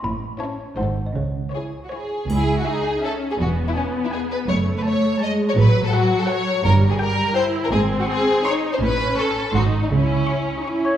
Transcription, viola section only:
X:1
M:3/4
L:1/16
Q:1/4=165
K:C#m
V:1 name="Viola section"
z4 C4 D4 | z4 E4 E4 | E4 D4 C4 | B,12 |
A,8 G,4 | F,12 | =G,8 E4 | ^B,8 D4 |
C8 D4 | E4 E3 D E4 |]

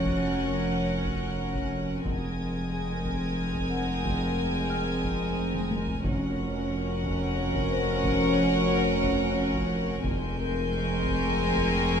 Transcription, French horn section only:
X:1
M:3/4
L:1/8
Q:1/4=90
K:Gblyd
V:1 name="French horn section"
[DG]6 | [A,C]6- | [A,C]6 | [DG]6- |
[DG]6 | [A,C]6 |]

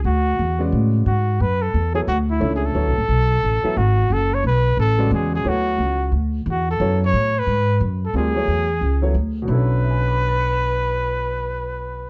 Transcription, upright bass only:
X:1
M:4/4
L:1/8
Q:"Swing" 1/4=178
K:Bdor
V:1 name="Upright bass" clef=bass
D,,2 E,,2 A,,2 G,,2 | F,,2 E,,2 D,,2 C,,2 | (3D,, B,,, A,,, B,,,2 A,,, z G,,,2 | F,,,2 B,,,2 A,,,2 E,,2 |
D,,2 C,,2 D,,2 E,,2 | F,,2 A,,2 G,,2 F,,2 | D,,2 E,,2 C,,2 D,,2 | B,,,8- |
B,,,8 |]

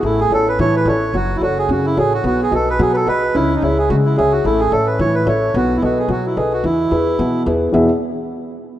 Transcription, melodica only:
X:1
M:4/4
L:1/16
Q:"Swing" 1/4=218
K:E
V:1 name="Melodica"
E2 G2 A2 B2 c2 B2 c4 | F3 E F2 G2 F2 E2 G2 F2 | F2 G2 A2 B2 G3/2 B/2 A2 B4 | E3 D E2 G2 F2 E2 G2 F2 |
E2 G2 A2 B2 c2 B2 c4 | F3 E F2 G2 F2 E2 G2 F2 | E12 z4 | z16 |]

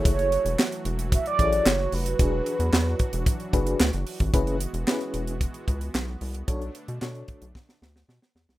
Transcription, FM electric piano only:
X:1
M:4/4
L:1/8
Q:1/4=112
K:F#m
V:1 name="FM electric piano"
[EGAc]2 z3 [EGAc] z2 | [DFGB]2 z3 [DFGB] z2 | [CEGB] z [CEGB]2 z4 | [DFAc] z [DFAc]2 z4 |]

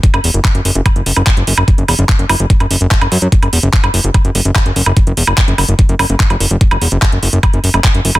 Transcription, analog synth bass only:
X:1
M:4/4
L:1/16
Q:1/4=146
K:Edor
V:1 name="Analog synth bass" clef=bass
z F,,, E,,, F,,, z F,,, F,,, F,,, z F,,, F,,, F,,, z F,,, F,,, F,,, | z F,,, E,,, F,,, z F,,, F,,, F,,, z F,,, F,,, F,,, z F,,, F,, F,, | z F,,, E,,, F,,, z F,,, F,,, F,,, z F,,, F,,, F,,, z F,,, F,,, F,,, | z F,,, E,,, F,,, z F,,, F,,, F,,, z F,,, F,,, F,,, z F,,, F,,, F,,, |
z F,,, E,,, F,,, z F,,, F,,, F,,, z F,,, F,,, F,,, z F,,, F,,, F,,, |]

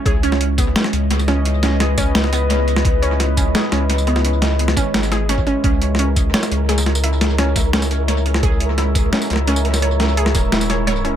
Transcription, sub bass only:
X:1
M:4/4
L:1/8
Q:1/4=172
K:C#dor
V:1 name="Sub bass" clef=bass
C,,4 z C,,3- | C,,3 C,,4- C,, | C,,4 z C,,3- | C,,3 G,,,4 z |
C,,4 z C,,3- | C,,3 C,,4- C,, | C,,4 z C,,3- | C,,3 D,,,4- D,,, |]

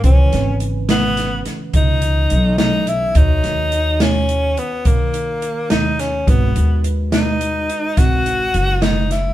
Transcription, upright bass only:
X:1
M:11/8
L:1/8
Q:1/4=106
K:G#m
V:1 name="Upright bass" clef=bass
C,, G,,,4 z C,,2 B,,,3 | D,, D,,4 z D,3 D,,2 | G,,, D,,4 z G,,,2 F,,,3 |]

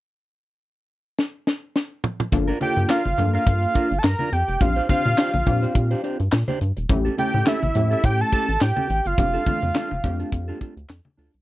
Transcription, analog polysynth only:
X:1
M:4/4
L:1/16
Q:"Swing 16ths" 1/4=105
K:Gdor
V:1 name="Analog polysynth"
z16 | [B,DFA]2 [B,DFA]2 z2 [B,DFA]4- [B,DFA] z4 z | [CDFG]2 [CDFG]2 z2 [CDFG]4- [CDFG] z4 z | [A,^CEG]2 [A,CEA]2 z2 [A,CEG]4- [A,CEG] z4 z |
[A,CDG]2 [E,A,CD]2 z2 [A,CDG]4- [A,CDG] z4 z |]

